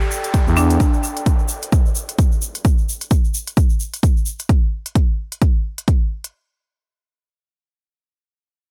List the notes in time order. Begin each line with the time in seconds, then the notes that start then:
Already playing: A4 D5 G5, downlifter
0.01 shaker
0.11 shaker
0.24 closed hi-hat, shaker
0.34 kick, closed hi-hat, shaker
0.47 E2, shaker
0.57 D4, shaker
0.70 closed hi-hat, shaker
0.80 kick, closed hi-hat, shaker
0.94 shaker
1.03 shaker
1.17 closed hi-hat, shaker
1.26 kick, closed hi-hat, shaker
1.39 shaker
1.48 shaker
1.62 closed hi-hat, shaker
1.72 kick, closed hi-hat, shaker
1.86 shaker
1.95 shaker
2.09 closed hi-hat, shaker
2.19 kick, closed hi-hat, shaker
2.32 shaker
2.42 shaker
2.55 closed hi-hat, shaker
2.65 kick, closed hi-hat, shaker
2.78 shaker
2.89 shaker
3.01 closed hi-hat, shaker
3.11 kick, closed hi-hat, shaker
3.24 shaker
3.34 shaker
3.47 closed hi-hat, shaker
3.57 kick, closed hi-hat, shaker
3.70 shaker
3.80 shaker
3.94 closed hi-hat, shaker
4.03 kick, closed hi-hat, shaker
4.17 shaker
4.26 shaker
4.39 closed hi-hat, shaker
4.49 kick, closed hi-hat
4.86 closed hi-hat
4.95 kick, closed hi-hat
5.32 closed hi-hat
5.42 kick, closed hi-hat
5.78 closed hi-hat
5.88 kick, closed hi-hat
6.24 closed hi-hat